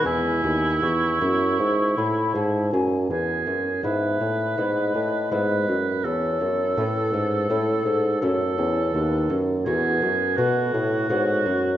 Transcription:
<<
  \new Staff \with { instrumentName = "Flute" } { \time 4/4 \key e \major \tempo 4 = 82 gis''4 cis'''4. b''8 a''8 gis''8 | b'4 e''4 dis''2 | cis''4 b'4 a'4 cis''4 | b'8 r8 b'2 cis''4 | }
  \new Staff \with { instrumentName = "Oboe" } { \time 4/4 \key e \major e'2.~ e'8 r8 | gis'4 b'2 b'4 | a'2. a'4~ | a'8 r8 gis'4 fis'2 | }
  \new Staff \with { instrumentName = "Lute" } { \clef bass \time 4/4 \key e \major << { <gis b e'>1 | r4 <gis b e'>4 <gis b e'>4 <gis b e'>4 | r4 <a cis' e'>4 <a cis' e'>4 <a cis' e'>4 | r4 <a b fis'>4 <a b fis'>4 <a b fis'>4 | } \\ { e,8 dis,8 e,8 fis,8 gis,8 a,8 gis,8 fis,8 | e,8 fis,8 gis,8 a,8 gis,8 a,8 gis,8 fis,8 | e,8 fis,8 a,8 gis,8 a,8 gis,8 fis,8 e,8 | dis,8 fis,8 e,8 fis,8 b,8 a,8 gis,8 fis,8 | } >> }
  \new Staff \with { instrumentName = "Bassoon" } { \clef bass \time 4/4 \key e \major e,8 dis,8 e,8 fis,8 gis,8 a,8 gis,8 fis,8 | e,8 fis,8 gis,8 a,8 gis,8 a,8 gis,8 fis,8 | e,8 fis,8 a,8 gis,8 a,8 gis,8 fis,8 e,8 | dis,8 fis,8 e,8 fis,8 b,8 a,8 gis,8 fis,8 | }
>>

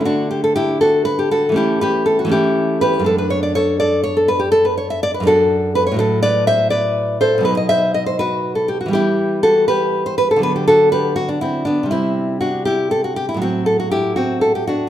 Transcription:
\new Staff \with { instrumentName = "Nylon-string guitar" } { \time 12/8 \key d \major \tempo 4. = 81 << { <d' fis'>8 g'16 a'16 <e' g'>8 <fis' a'>8 b'16 g'16 <fis' a'>8 <e' g'>8 <g' b'>8 a'16 fis'16 <e' g'>4 <g' b'>8 | a'16 b'16 cis''16 d''16 <a' cis''>8 <a' d''>8 cis''16 a'16 b'16 g'16 a'16 b'16 cis''16 e''16 d''16 b'16 <fis' a'>4 b'16 cis''16 | \key b \phrygian <a' c''>8 <b' d''>8 <c'' e''>8 <b' d''>4 <a' c''>8 b'16 dis''16 <c'' e''>8 dis''16 c''16 <fis' b'>8. a'16 g'16 fis'16 | <e' g'>4 <fis' a'>8 <g' b'>8. c''16 b'16 a'16 b'16 g'16 <fis' a'>8 <g' b'>8 fis'16 d'16 <c' e'>8 <b d'>8 |
<c' e'>4 <d' fis'>8 <e' g'>8 a'16 fis'16 g'16 e'16 <c' fis'>8 a'16 fis'16 <e' g'>8 <c' fis'>8 a'16 g'16 <d' fis'>8 | } \\ { <d a>2. <e a cis'>4. <e a cis'>4. | <fis, a d'>1~ <fis, a d'>8 <fis, a d'>4. | <a, fis fis'>2. <b, fis dis'>2. | <e g b>2. <d fis b>2. |
<c g>2. <a, fis>2. | } >> }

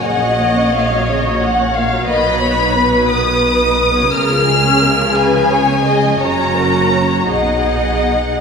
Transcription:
<<
  \new Staff \with { instrumentName = "Violin section" } { \time 6/8 \key fis \major \tempo 4. = 58 fis''4 eis''8 dis''8 r4 | b''4. dis'''4. | eis'''4. gis''4. | ais''4. fis''4. | }
  \new Staff \with { instrumentName = "Violin section" } { \time 6/8 \key fis \major dis''4. cis''8 fis''8 eis''8 | dis''8 cis''8 b'2 | ais'8 gis'8 ais'8 b'8 cis''8 dis''8 | cis''8 ais'8 cis''8 dis''4. | }
  \new Staff \with { instrumentName = "Viola section" } { \clef bass \time 6/8 \key fis \major << { cis''2. | b'2. | gis'2. | fis'4. gis'4. | } \\ { cis16 fis16 ais16 cis'16 ais16 fis16 cis16 fis16 ais16 cis'16 ais16 fis16 | dis16 fis16 b16 dis'16 b16 fis16 dis16 fis16 b16 dis'16 b16 fis16 | cis16 eis16 gis16 cis'16 gis16 eis16 cis16 eis16 gis16 cis'16 gis16 eis16 | cis'4. dis'4. | } >> }
  \new Staff \with { instrumentName = "Cello section" } { \clef bass \time 6/8 \key fis \major ais,2. | b,2. | cis2. | fis,4. b,4. | }
  \new Staff \with { instrumentName = "Double bass section" } { \clef bass \time 6/8 \key fis \major ais,,2. | b,,2. | cis,2. | fis,,4. b,,4. | }
>>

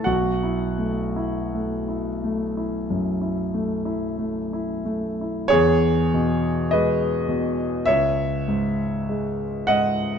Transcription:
<<
  \new Staff \with { instrumentName = "Grand piano" } { \time 4/4 \key e \major \tempo 4 = 47 <fis' fis''>2.~ <fis' fis''>8 r8 | <gis' cis''>4 <b' dis''>4 <cis'' e''>4. <dis'' fis''>8 | }
  \new Staff \with { instrumentName = "Grand piano" } { \time 4/4 \key e \major b,,16 e'16 a16 e'16 a16 e'16 a16 e'16 fis,16 e'16 a16 e'16 a16 e'16 a16 e'16 | e,8 b,8 gis8 b,8 cis,8 gis,8 gis8 gis,8 | }
>>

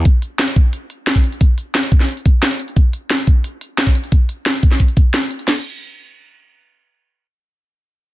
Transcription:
\new DrumStaff \with { instrumentName = "Drums" } \drummode { \time 4/4 \tempo 4 = 177 <hh bd>8 hh8 <hh sn>16 hh16 <hh bd>8 hh8 hh8 <hh sn>16 bd16 hh16 hh16 | <hh bd>8 hh8 <hh sn>16 hh16 <hh bd>16 sn16 hh16 hh16 <hh bd>8 <hh sn>8 hh16 hh16 | <hh bd>8 hh8 <hh sn>16 hh16 <hh bd>8 hh8 hh8 <hh sn>16 bd16 hh16 hh16 | <hh bd>8 hh8 <hh sn>16 hh16 <hh bd>16 sn16 <hh bd>16 hh16 <hh bd>8 <hh sn>8 hh16 hh16 |
<cymc sn>4 r4 r4 r4 | r4 r4 r4 r4 | }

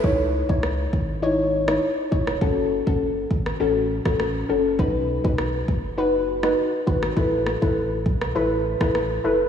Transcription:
<<
  \new Staff \with { instrumentName = "Synth pluck" } { \time 4/4 \key cis \minor \tempo 4 = 101 <dis' e' cis''>8. <dis' e' cis''>16 r4 <dis' e' cis''>8. <dis' e' cis''>8. <dis' e' cis''>8 | <cis' fis' a'>8. <cis' fis' a'>16 r4 <cis' fis' a'>8. <cis' fis' a'>8. <cis' fis' a'>8 | <dis' fis' b'>8. <dis' fis' b'>16 r4 <dis' fis' b'>8. <dis' fis' b'>8. <dis' fis' b'>8 | <e' a' b'>8. <e' a' b'>16 r4 <e' a' b'>8. <e' a' b'>8. <e' a' b'>8 | }
  \new Staff \with { instrumentName = "Sub bass" } { \clef bass \time 4/4 \key cis \minor cis,8. cis,8. gis,,4. r8 e,,8 | fis,,8. fis,,8. gis,,8 a,,8. a,,8. fis,,8 | b,,8. b,,8. fis,,4. r8 gis,,8 | a,,8. a,,8. b,,8 a,,8. a,,8. fis,,8 | }
  \new DrumStaff \with { instrumentName = "Drums" } \drummode { \time 4/4 bd8. bd16 ss8 bd8 r8. ss16 r8 bd16 ss16 | bd8. bd16 r8 bd16 ss16 r8. <bd ss>16 ss4 | bd8. bd16 ss8 bd8 r8. ss16 r8 bd16 ss16 | bd8 ss16 bd16 r8 bd16 ss16 r8. <bd ss>16 ss4 | }
>>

